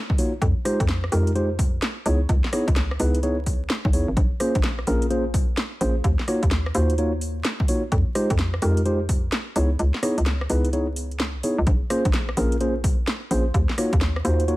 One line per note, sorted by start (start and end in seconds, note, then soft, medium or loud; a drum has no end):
0.10 kick loud
0.18 0.31 A#3 medium
0.18 0.31 D#4 medium
0.18 0.31 F4 medium
0.18 0.31 F#4 medium
0.18 0.31 C#5 medium
0.18 open hi-hat loud
0.42 0.54 F2 loud
0.42 kick loud
0.42 closed hi-hat medium
0.65 0.78 G#3 medium
0.65 0.78 D#4 medium
0.65 0.78 F4 medium
0.65 0.78 G4 medium
0.65 0.78 C5 loud
0.65 cross-stick medium
0.65 open hi-hat loud
0.80 1.10 F2 medium
0.80 kick loud
0.80 closed hi-hat medium
0.89 snare loud
0.89 closed hi-hat medium
1.04 cross-stick medium
1.12 1.80 F2 loud
1.12 1.30 G#3 medium
1.12 1.30 D#4 medium
1.12 1.30 F4 medium
1.12 1.30 G4 medium
1.12 1.30 A#4 medium
1.12 open hi-hat loud
1.27 closed hi-hat medium
1.35 1.48 G#3 medium
1.35 1.48 D#4 medium
1.35 1.48 F4 medium
1.35 1.48 G4 medium
1.35 1.48 C5 medium
1.35 closed hi-hat medium
1.59 kick loud
1.59 open hi-hat loud
1.82 snare loud
1.82 closed hi-hat medium
2.06 2.26 C#2 loud
2.06 2.19 B3 medium
2.06 2.19 D#4 medium
2.06 2.19 E4 medium
2.06 2.19 G#4 medium
2.06 2.19 C#5 medium
2.06 open hi-hat loud
2.29 2.42 C#2 loud
2.29 kick loud
2.29 closed hi-hat medium
2.44 snare medium
2.53 2.66 B3 medium
2.53 2.66 D#4 medium
2.53 2.66 E4 medium
2.53 2.66 G#4 medium
2.53 2.66 C#5 loud
2.53 cross-stick medium
2.53 open hi-hat loud
2.68 2.97 C#2 medium
2.68 kick loud
2.68 closed hi-hat medium
2.76 snare loud
2.76 closed hi-hat medium
2.91 cross-stick medium
3.00 3.68 C#2 medium
3.00 3.18 B3 medium
3.00 3.18 D#4 medium
3.00 3.18 E4 medium
3.00 3.18 G#4 medium
3.00 3.18 B4 loud
3.00 open hi-hat loud
3.15 closed hi-hat medium
3.23 3.36 B3 medium
3.23 3.36 D#4 medium
3.23 3.36 E4 medium
3.23 3.36 G#4 medium
3.23 3.36 C#5 medium
3.23 closed hi-hat medium
3.46 kick medium
3.46 open hi-hat loud
3.70 snare loud
3.70 closed hi-hat medium
3.85 3.95 B1 medium
3.85 kick loud
3.93 4.06 E2 medium
3.93 4.06 B3 medium
3.93 4.06 D#4 medium
3.93 4.06 E4 medium
3.93 4.06 G#4 medium
3.93 4.06 C#5 medium
3.93 open hi-hat medium
4.08 4.15 G#1 medium
4.17 4.29 A#1 loud
4.17 kick loud
4.17 closed hi-hat medium
4.40 4.53 A#3 medium
4.40 4.53 C#4 medium
4.40 4.53 F4 medium
4.40 4.53 G#4 medium
4.40 4.53 C5 loud
4.40 cross-stick medium
4.40 open hi-hat loud
4.55 4.85 A#1 medium
4.55 kick medium
4.55 closed hi-hat medium
4.64 snare loud
4.64 closed hi-hat medium
4.79 cross-stick medium
4.87 5.55 A#1 medium
4.87 5.05 A#3 medium
4.87 5.05 C#4 medium
4.87 5.05 F4 medium
4.87 5.05 G#4 medium
4.87 5.05 A#4 loud
4.87 open hi-hat loud
5.02 closed hi-hat medium
5.10 5.23 A#3 medium
5.10 5.23 C#4 medium
5.10 5.23 F4 medium
5.10 5.23 G#4 medium
5.10 5.23 C5 medium
5.10 closed hi-hat medium
5.34 kick loud
5.34 open hi-hat loud
5.57 snare loud
5.57 closed hi-hat medium
5.81 6.01 A#1 loud
5.81 5.94 A#3 medium
5.81 5.94 C#4 medium
5.81 5.94 F4 medium
5.81 5.94 G#4 medium
5.81 5.94 C5 medium
5.81 open hi-hat loud
6.04 6.17 D#2 loud
6.04 kick loud
6.04 closed hi-hat medium
6.19 snare medium
6.28 6.41 A#3 medium
6.28 6.41 D#4 medium
6.28 6.41 F4 medium
6.28 6.41 F#4 medium
6.28 6.41 C#5 loud
6.28 cross-stick medium
6.28 open hi-hat loud
6.43 6.72 D#2 medium
6.43 kick loud
6.43 closed hi-hat medium
6.51 snare loud
6.51 closed hi-hat medium
6.66 cross-stick medium
6.75 7.43 D#2 loud
6.75 6.93 A#3 medium
6.75 6.93 D#4 medium
6.75 6.93 F4 medium
6.75 6.93 F#4 medium
6.75 6.93 C5 medium
6.75 open hi-hat loud
6.90 closed hi-hat medium
6.98 7.11 A#3 medium
6.98 7.11 D#4 medium
6.98 7.11 F4 medium
6.98 7.11 F#4 medium
6.98 7.11 C#5 medium
6.98 closed hi-hat medium
7.21 open hi-hat loud
7.45 snare loud
7.45 closed hi-hat medium
7.60 kick loud
7.68 7.81 A#3 medium
7.68 7.81 D#4 medium
7.68 7.81 F4 medium
7.68 7.81 F#4 medium
7.68 7.81 C#5 medium
7.68 open hi-hat loud
7.92 8.04 F2 loud
7.92 kick loud
7.92 closed hi-hat medium
8.15 8.28 G#3 medium
8.15 8.28 D#4 medium
8.15 8.28 F4 medium
8.15 8.28 G4 medium
8.15 8.28 C5 loud
8.15 cross-stick medium
8.15 open hi-hat loud
8.30 8.60 F2 medium
8.30 kick medium
8.30 closed hi-hat medium
8.39 snare loud
8.39 closed hi-hat medium
8.54 cross-stick medium
8.62 9.30 F2 loud
8.62 8.80 G#3 medium
8.62 8.80 D#4 medium
8.62 8.80 F4 medium
8.62 8.80 G4 medium
8.62 8.80 A#4 loud
8.62 open hi-hat loud
8.77 closed hi-hat medium
8.86 8.98 G#3 medium
8.86 8.98 D#4 medium
8.86 8.98 F4 medium
8.86 8.98 G4 medium
8.86 8.98 C5 medium
8.86 closed hi-hat medium
9.09 kick medium
9.09 open hi-hat loud
9.32 snare loud
9.32 closed hi-hat medium
9.56 9.76 C#2 loud
9.56 9.69 B3 medium
9.56 9.69 D#4 medium
9.56 9.69 E4 medium
9.56 9.69 G#4 medium
9.56 9.69 C#5 medium
9.56 open hi-hat loud
9.79 9.92 C#2 loud
9.79 closed hi-hat medium
9.94 snare medium
10.03 10.16 B3 medium
10.03 10.16 D#4 medium
10.03 10.16 E4 medium
10.03 10.16 G#4 medium
10.03 10.16 C#5 medium
10.03 cross-stick medium
10.03 open hi-hat loud
10.18 10.47 C#2 medium
10.18 closed hi-hat medium
10.26 snare loud
10.26 closed hi-hat medium
10.41 cross-stick medium
10.50 11.37 C#2 medium
10.50 10.68 B3 medium
10.50 10.68 D#4 medium
10.50 10.68 E4 medium
10.50 10.68 G#4 medium
10.50 10.68 B4 medium
10.50 open hi-hat loud
10.65 closed hi-hat medium
10.73 10.86 B3 medium
10.73 10.86 D#4 medium
10.73 10.86 E4 medium
10.73 10.86 G#4 medium
10.73 10.86 C#5 medium
10.73 closed hi-hat medium
10.96 open hi-hat loud
11.11 closed hi-hat soft
11.20 snare loud
11.20 closed hi-hat medium
11.35 11.42 B1 loud
11.43 11.56 B3 medium
11.43 11.56 D#4 medium
11.43 11.56 E4 medium
11.43 11.56 G#4 medium
11.43 11.56 C#5 medium
11.43 open hi-hat loud
11.58 11.65 C#2 medium
11.67 11.79 A#1 loud
11.67 kick loud
11.67 closed hi-hat medium
11.90 12.03 A#3 medium
11.90 12.03 C#4 medium
11.90 12.03 F4 medium
11.90 12.03 G#4 medium
11.90 12.03 C5 loud
11.90 cross-stick medium
11.90 open hi-hat loud
12.05 12.35 A#1 medium
12.05 kick loud
12.05 closed hi-hat medium
12.14 snare loud
12.14 closed hi-hat medium
12.29 cross-stick medium
12.37 13.05 A#1 loud
12.37 12.55 A#3 medium
12.37 12.55 C#4 medium
12.37 12.55 F4 medium
12.37 12.55 G#4 medium
12.37 12.55 A#4 medium
12.37 open hi-hat loud
12.52 closed hi-hat medium
12.61 12.74 A#3 medium
12.61 12.74 C#4 medium
12.61 12.74 F4 medium
12.61 12.74 G#4 medium
12.61 12.74 C5 medium
12.61 closed hi-hat medium
12.84 kick loud
12.84 open hi-hat loud
13.08 snare loud
13.08 closed hi-hat medium
13.31 13.51 A#1 medium
13.31 13.44 A#3 medium
13.31 13.44 C#4 medium
13.31 13.44 F4 medium
13.31 13.44 G#4 medium
13.31 13.44 C5 medium
13.31 open hi-hat loud
13.54 13.67 D#2 loud
13.54 kick loud
13.54 closed hi-hat medium
13.69 snare medium
13.78 13.91 A#3 medium
13.78 13.91 D#4 medium
13.78 13.91 F4 medium
13.78 13.91 F#4 medium
13.78 13.91 C#5 loud
13.78 cross-stick medium
13.78 open hi-hat loud
13.93 14.22 D#2 medium
13.93 kick loud
13.93 closed hi-hat medium
14.01 snare loud
14.01 closed hi-hat medium
14.16 cross-stick medium
14.25 14.56 D#2 medium
14.25 14.43 A#3 medium
14.25 14.43 D#4 medium
14.25 14.43 F4 medium
14.25 14.43 F#4 medium
14.25 14.43 C5 loud
14.25 open hi-hat loud
14.40 closed hi-hat medium
14.48 14.56 A#3 medium
14.48 14.56 D#4 medium
14.48 14.56 F4 medium
14.48 14.56 F#4 medium
14.48 14.56 C#5 medium
14.48 closed hi-hat medium